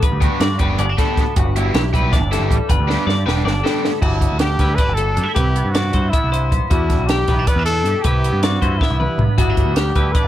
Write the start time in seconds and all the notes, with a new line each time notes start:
Already playing: D3 B3 D4
0.03 G2 B4, kick, closed hi-hat
0.12 D2
0.21 G3 B3 D4 F#4 G4, kick, closed hi-hat
0.40 G2 D3 D5, snare, closed hi-hat
0.59 F#1 G3 B3 D4 G4 B4, kick, closed hi-hat
0.78 G1 B3 D5, closed hi-hat
0.89 D4
0.98 D2 G3 B3 D4 G4 A4, kick, snare, closed hi-hat
1.17 B3, kick, snare, closed hi-hat
1.36 G1 G2 F#4, kick, closed hi-hat
1.56 G3 B3 E4 G4, closed hi-hat
1.74 B1 E3 G4, snare, closed hi-hat
1.93 G3 B3 E4 G4 B4, kick, closed hi-hat
2.12 D4 D5, kick, snare, closed hi-hat
2.21 G1
2.30 G2 G3 B3 E4 G4 A4, snare, closed hi-hat
2.40 G1
2.51 A1 G3, kick, closed hi-hat
2.69 G1 G2 B4, kick, closed hi-hat
2.79 D2
2.88 G3 B3 D4 G4, snare
3.07 G2 D3 D5, snare
3.26 E1 G3 B3 D4 G4 B4, snare
3.45 G1 D4 D5, snare
3.63 D2 G3 B3 D4 G4 A4, snare
3.85 B3, snare
4.01 G1 G2 D4 E4 F#4, kick, crash
4.21 B3, kick, closed hi-hat
4.32 D2
4.39 G4, snare, closed hi-hat
4.59 D2 D3 E4 B4, kick, snare, closed hi-hat
4.75 D4 B4 D5, kick, closed hi-hat
4.88 G1
4.94 D2 A4, closed hi-hat
5.14 G2 D4, closed hi-hat
5.23 E4
5.34 C2 C3 E4 G4 B4, kick, closed hi-hat
5.55 B3, closed hi-hat
5.65 G2
5.72 F#4 D5, snare, closed hi-hat
5.92 G2 E3 E4 C5, kick, closed hi-hat
6.10 B3 E4 E5, kick, closed hi-hat
6.24 C2
6.31 G2 C5, closed hi-hat
6.51 B1 B3, kick, closed hi-hat
6.70 E2 D4 E4 F#4, kick, closed hi-hat
6.90 G3, kick, snare, closed hi-hat
6.99 B1
7.07 G4, snare, closed hi-hat
7.28 B1 E3 B3 B4, kick, snare, closed hi-hat
7.39 D4
7.47 B3 B4 D5, kick, closed hi-hat
7.56 E2 D4
7.66 B2 A4, closed hi-hat
7.85 G2 G4, closed hi-hat
8.03 C2 C3 E4 G4 B4, kick, closed hi-hat
8.24 B3, closed hi-hat
8.33 G2
8.43 F#4 D5, snare, closed hi-hat
8.61 G2 E3 E4 C5, kick, closed hi-hat
8.78 B3 E4 E5, kick, snare
8.90 C2
9.00 G2 B4, mid tom
9.18 C2 B3, floor tom
9.36 G1 G2 B3 E4 F#4, kick, closed hi-hat, splash
9.50 D4
9.57 B3, kick, closed hi-hat
9.66 D2
9.75 G4, snare, closed hi-hat
9.95 D2 D3 E4 B4, kick, closed hi-hat
10.12 B4 D5, kick, closed hi-hat
10.17 D4
10.24 G1